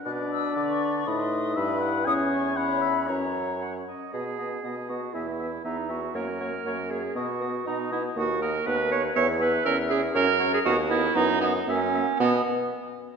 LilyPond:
<<
  \new Staff \with { instrumentName = "Flute" } { \time 2/4 \key b \minor \tempo 4 = 119 fis'''8 e'''8 d'''16 cis'''8. | b''16 c'''8. b''4 | \key b \major dis'''8 cis'''8 b''4 | ais''4 r4 |
fis''8 fis''8 fis''8 fis''8 | gis''8 gis''8 gis''8 gis''8 | fis''8 fis''8 fis''8 fis''8 | fis''8 fis''8 fis''8 fis''8 |
fis''8 fis''8 fis''8 fis''8 | gis''8 gis''8 gis''8 gis''8 | fis''8 fis''8 fis''8 fis''8 | fis''8 fis''8 fis''8 fis''8 |
fis''8 r4. | }
  \new Staff \with { instrumentName = "Oboe" } { \time 2/4 \key b \minor d''2 | dis''4 e''8 fis''8 | \key b \major gis''4 fis''8 e''8 | cis''4. r8 |
dis''8 dis''8 dis''8 dis''8 | e''8 e''8 e''8 e''8 | cis''8 cis''8 cis''8 cis''8 | dis''8 dis''8 dis''8 dis''8 |
dis''8 dis''8 fis''8 fis''8 | e''8 e''8 e''8 e''8 | cis''8 cis''8 dis''8 dis''8 | dis''8 dis''8 e''8 e''8 |
dis''8 r4. | }
  \new Staff \with { instrumentName = "Clarinet" } { \time 2/4 \key b \minor b'2 | b'4 b'4 | \key b \major cis''4 cis''4 | cis''4 fis''8 dis''8 |
gis'4. fis'8 | e'4 dis'8 fis'8 | ais'4. gis'8 | fis'4 dis'8 e'8 |
fis'8 ais'8 b'8 cis''8 | cis''8 b'8 ais'8 gis'8 | ais'8. gis'16 fis'8 e'8 | dis'8 b8 cis'4 |
b8 r4. | }
  \new Staff \with { instrumentName = "French horn" } { \time 2/4 \key b \minor d'2 | dis'4 e'4 | \key b \major cis'4 cis'4 | cis'4. r8 |
b8 b8 b8 b8 | b8 b8 b8 b8 | ais8 ais8 ais8 ais8 | b8 b8 b8 b8 |
ais8 ais8 b8 b8 | b8 b8 cis'8 cis'8 | cis'8 cis'8 b8 b8 | b8 b8 ais8 ais8 |
b8 r4. | }
  \new Staff \with { instrumentName = "Bassoon" } { \clef bass \time 2/4 \key b \minor b,4 d4 | a,4 g,4 | \key b \major e,2 | fis,4. r8 |
b,4 b,4 | e,4 e,4 | fis,4 fis,4 | b,4 b,4 |
dis,4 dis,4 | e,4 e,4 | fis,4 dis,4 | fis,4 fis,4 |
b,8 r4. | }
>>